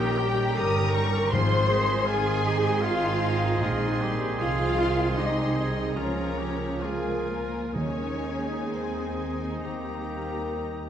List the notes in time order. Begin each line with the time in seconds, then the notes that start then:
Already playing: A#1 A#2 D#3 G3 A#3 C#4 D#4 G4 A#4 C#5 D#5 G5 A#5
0.00 C#6
0.18 G3 G4 D#5
0.38 C#5
0.56 G1 D#4 A#4 A#5 D#6
0.75 G3
0.94 A#3 C#6
1.13 G3
1.31 G#1 G#2 D#3 F3 C4 F4 G#4 C5 C6
1.50 D#3
1.70 G#3 D#4
1.89 D#4
2.06 D#3 F4 G#4 C5 G#5 C6
2.44 D#4 G4 D#5
2.81 F4 D#5 F5
3.20 D#4 D#5
3.42 C5
3.60 A#1 G#3 D#4 F4 D#5 C6
3.81 G#3
4.01 D#3 G3 G4
4.20 G#3
4.39 C2 C3 F3 F4 G#4 F5 C6
4.59 C4
4.78 D#3 G#3 F4
4.98 D#4
5.17 G#3 D#4 G4 G#4 C5 D#5
5.36 G#4
5.56 G3 G#4 D#5
5.75 C6
5.95 C#2 C#3 F3 A#3 C#4 F4 A#4 C#5 A#5
6.37 F3 G#3 G4
6.59 F4
6.81 G#3 F4 G#4 A#4 G#5
7.04 G#4
7.27 A#3 A#4 F5
7.50 A#5
7.74 D#2 D#3 G#3 C#4 D#4 G#4 C#5 G#5
8.00 G#3
8.25 D#4
8.49 G#4
8.71 C4 C5
8.97 D#5
9.20 G#5
9.42 D#5
9.65 D#2 D#3 A#3 G4 A#5
9.88 G3
10.10 D#4
10.31 A#4
10.74 D#5